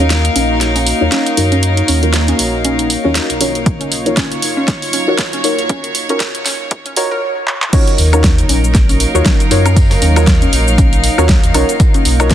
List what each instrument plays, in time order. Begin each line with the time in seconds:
Already playing: sub bass D#2, analog synth pad A#3 D#4 F#4 C#5, string section D#4 A#4 F5
0.00 synth stab D#4 F4 F#4 A#4 C#5
0.10 snare, closed hi-hat
0.25 closed hi-hat
0.36 sub bass A#1, synth arpeggio sound C#4, open hi-hat
0.61 snare, closed hi-hat
0.76 synth arpeggio sound C#4, open hi-hat
0.86 open hi-hat
1.01 sub bass D#2, synth stab D#4 F4 F#4 A#4 C#5
1.12 synth arpeggio sound C#4, snare, closed hi-hat
1.26 closed hi-hat
1.37 sub bass F#2, synth stab D#4 F4 F#4 A#4 C#5, open hi-hat
1.52 synth arpeggio sound C#4, closed hi-hat
1.63 closed hi-hat
1.77 closed hi-hat
1.88 sub bass D#2, synth arpeggio sound C#4, open hi-hat
2.02 synth stab D#4 F4 F#4 A#4 C#5, closed hi-hat
2.13 snare, closed hi-hat
2.28 synth arpeggio sound C#4, closed hi-hat
2.39 sub bass A#1, open hi-hat
2.65 synth arpeggio sound C#4, closed hi-hat
2.79 closed hi-hat
2.90 open hi-hat
3.04 sub bass D#2, synth arpeggio sound C#4, synth stab D#4 F4 F#4 A#4 C#5
3.15 snare, closed hi-hat
3.30 sub bass B1, closed hi-hat
3.40 synth arpeggio sound C#4, synth stab D#4 F4 F#4 A#4 C#5, analog synth pad F4 C#5, open hi-hat
3.55 closed hi-hat
3.66 kick, closed hi-hat
3.81 synth arpeggio sound C#4, closed hi-hat
3.92 sub bass B1, open hi-hat
4.06 string section F#3, synth stab D#4 F4 F#4 A#4 C#5, closed hi-hat
4.17 synth arpeggio sound C#4, string section C#5, kick, snare, closed hi-hat
4.32 closed hi-hat
4.42 sub bass F#1, open hi-hat
4.57 synth arpeggio sound C#4
4.68 kick, snare, closed hi-hat
4.82 open hi-hat
4.93 synth arpeggio sound C#4, open hi-hat
5.07 sub bass B1, synth stab D#4 F4 F#4 A#4 C#5
5.18 kick, snare, closed hi-hat
5.33 synth arpeggio sound C#4, closed hi-hat
5.44 sub bass D#2, synth stab D#4 F4 F#4 A#4 C#5, open hi-hat
5.59 closed hi-hat
5.69 synth arpeggio sound C#4, kick, closed hi-hat
5.84 closed hi-hat
5.95 sub bass B1, open hi-hat
6.09 synth arpeggio sound C#4, synth stab D#4 F4 F#4 A#4 C#5, closed hi-hat
6.20 kick, snare, closed hi-hat
6.35 closed hi-hat
6.45 sub bass F#1, synth arpeggio sound C#4, snare, open hi-hat
6.71 kick, closed hi-hat
6.86 synth arpeggio sound C#4, closed hi-hat
6.96 synth stab D#4 F4 F#4 A#4 C#5, synth arpeggio sound F#4, open hi-hat
7.11 sub bass B1, synth arpeggio sound A#4
7.47 clap
7.62 clap
7.73 analog synth pad F#3 A#3 D#4 C#5, synth arpeggio sound C#4, synth stab D#4 F4 F#4 A#4 C#5, string section D#4, kick, closed hi-hat, crash, cabasa
7.86 string section A#4, closed hi-hat, cabasa
7.98 sub bass D#2, closed hi-hat, open hi-hat
8.13 synth arpeggio sound C#4, synth stab D#4 F4 F#4 A#4 C#5, closed hi-hat, cabasa, high woodblock
8.24 kick, snare, closed hi-hat, cabasa
8.38 closed hi-hat, cabasa
8.49 sub bass A#1, synth arpeggio sound C#4, closed hi-hat, open hi-hat
8.64 cabasa
8.75 kick, snare, closed hi-hat, cabasa
8.89 synth arpeggio sound C#4, string section F5, open hi-hat, cabasa
9.00 closed hi-hat, open hi-hat
9.14 sub bass D#2, synth stab D#4 F4 F#4 A#4 C#5, cabasa
9.26 synth arpeggio sound C#4, kick, snare, closed hi-hat, cabasa
9.40 closed hi-hat, cabasa
9.51 sub bass F#2, synth stab D#4 F4 F#4 A#4 C#5, closed hi-hat, open hi-hat
9.66 synth arpeggio sound C#4, closed hi-hat, cabasa, high woodblock
9.76 kick, closed hi-hat, open hi-hat, cabasa
9.91 snare, open hi-hat, cabasa
10.02 sub bass D#2, synth arpeggio sound C#4, closed hi-hat, open hi-hat
10.16 synth stab D#4 F4 F#4 A#4 C#5, closed hi-hat, cabasa, high woodblock
10.27 kick, snare, closed hi-hat, cabasa
10.42 synth arpeggio sound C#4, closed hi-hat, cabasa
10.53 sub bass A#1, closed hi-hat, open hi-hat
10.68 cabasa
10.78 synth arpeggio sound C#4, kick, closed hi-hat, cabasa
10.93 closed hi-hat, cabasa
11.04 closed hi-hat, open hi-hat
11.18 sub bass D#2, synth arpeggio sound C#4, synth stab D#4 F4 F#4 A#4 C#5, cabasa, high woodblock
11.29 sub bass C#2, kick, snare, closed hi-hat, cabasa
11.44 sub bass D#2, closed hi-hat, cabasa
11.54 sub bass B1, synth arpeggio sound C#4, synth stab D#4 F4 F#4 A#4 C#5, analog synth pad F4 C#5, closed hi-hat, open hi-hat, high woodblock
11.69 closed hi-hat, cabasa
11.80 kick, closed hi-hat, cabasa
11.94 synth arpeggio sound C#4, closed hi-hat, cabasa
12.05 sub bass B1, closed hi-hat, open hi-hat
12.20 synth stab D#4 F4 F#4 A#4 C#5, closed hi-hat, cabasa, high woodblock
12.30 string section F#3, synth arpeggio sound C#4, kick, snare, closed hi-hat, cabasa